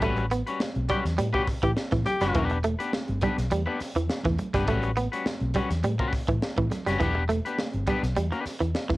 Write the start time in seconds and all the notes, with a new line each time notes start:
0.01 A1 G3 A3 C#4 F#4 B4, kick, closed hi-hat, low conga
0.16 muted clean electric guitar stroke, closed hi-hat, muted conga
0.31 B3, muted clean electric guitar stroke, closed hi-hat, high conga
0.47 G3 C#4 F#4 B4, closed hi-hat
0.60 muted clean electric guitar stroke, snare, muted conga, high conga
0.75 B1, closed hi-hat, muted conga
0.89 G3 C#4 F#4 G4 B4, kick, closed hi-hat, low conga
1.05 E2, muted clean electric guitar stroke, snare, closed hi-hat
1.18 A2 G3, muted clean electric guitar stroke, closed hi-hat, muted conga, high conga
1.33 G3 C#4 F#4 G4 B4, muted clean electric guitar stroke, kick, muted conga
1.47 muted clean electric guitar stroke, muted fingered electric bass stroke, kick, snare, open hi-hat
1.62 A2 E3 G4, muted clean electric guitar stroke, kick, closed hi-hat
1.76 muted clean electric guitar stroke, snare
1.91 A2 E3, muted clean electric guitar stroke, kick, snare, closed hi-hat, muted conga, high conga
2.05 G4, muted clean electric guitar stroke, snare, closed hi-hat, low conga
2.21 F#1 G3 C#4 F#4 B4, snare, closed hi-hat
2.34 E1 E3 B3 D4 G4 B4, kick, closed hi-hat, muted conga, low conga
2.50 muted clean electric guitar stroke, closed hi-hat, muted conga
2.64 A3, muted clean electric guitar stroke, closed hi-hat, high conga
2.79 B3 D4 G4 B4, closed hi-hat
2.93 muted clean electric guitar stroke, snare, muted conga, high conga
3.08 G1, closed hi-hat, muted conga
3.21 G3 B3 D4 G4 B4, kick, closed hi-hat, low conga
3.38 B1, muted clean electric guitar stroke, snare, closed hi-hat
3.51 E2 G3, muted clean electric guitar stroke, closed hi-hat, muted conga, high conga
3.66 B3 D4 G4 B4, muted clean electric guitar stroke, muted conga
3.80 muted clean electric guitar stroke, muted fingered electric bass stroke, snare, open hi-hat
3.95 E2 E3, muted clean electric guitar stroke, closed hi-hat
4.09 muted clean electric guitar stroke, snare, muted conga
4.23 E2 E3, muted clean electric guitar stroke, kick, snare, muted conga, high conga
4.38 muted clean electric guitar stroke, closed hi-hat, low conga
4.54 G1 G3 B3 D4 G4 B4, kick, snare, closed hi-hat
4.68 A1 G3 A3 C#4 F#4 B4, kick, closed hi-hat, muted conga, low conga
4.82 muted clean electric guitar stroke, closed hi-hat, muted conga
4.97 B3, muted clean electric guitar stroke, closed hi-hat, high conga
5.12 G3 C#4 F#4 B4, closed hi-hat
5.26 muted clean electric guitar stroke, snare, muted conga, high conga
5.40 B1, closed hi-hat, muted conga
5.54 G3 C#4 F#4 B4, kick, closed hi-hat, low conga
5.70 E2, muted clean electric guitar stroke, snare, closed hi-hat
5.83 A2 G3, muted clean electric guitar stroke, closed hi-hat, muted conga, high conga
5.99 G3 C#4 F#4 B4, muted clean electric guitar stroke, kick
6.13 muted fingered electric bass stroke, muted clean electric guitar stroke, kick, snare, open hi-hat
6.28 A2 E3, muted clean electric guitar stroke, kick, closed hi-hat
6.42 muted clean electric guitar stroke, snare, muted conga
6.56 A2 E3, muted clean electric guitar stroke, kick, closed hi-hat, muted conga, high conga
6.71 muted clean electric guitar stroke, snare, closed hi-hat, low conga
6.87 F#1 G3 C#4 F#4 B4, snare, closed hi-hat
7.00 E1 E3 B3 D4 G4 B4, kick, closed hi-hat, low conga
7.15 muted clean electric guitar stroke, muted conga
7.29 A3, muted clean electric guitar stroke, closed hi-hat, high conga
7.45 B3 D4 G4 B4, closed hi-hat
7.58 muted clean electric guitar stroke, snare, high conga
7.73 G1, closed hi-hat, muted conga
7.87 G3 B3 D4 G4 B4, kick, closed hi-hat, low conga
8.03 B1, muted clean electric guitar stroke, snare, closed hi-hat
8.16 E2 G3, muted clean electric guitar stroke, closed hi-hat, high conga
8.32 B3 D4 G4 B4, muted clean electric guitar stroke, closed hi-hat
8.46 muted fingered electric bass stroke, muted clean electric guitar stroke, snare, open hi-hat
8.61 E2 E3, muted clean electric guitar stroke, closed hi-hat
8.75 muted clean electric guitar stroke, snare
8.89 E2 E3, muted clean electric guitar stroke, kick, snare, high conga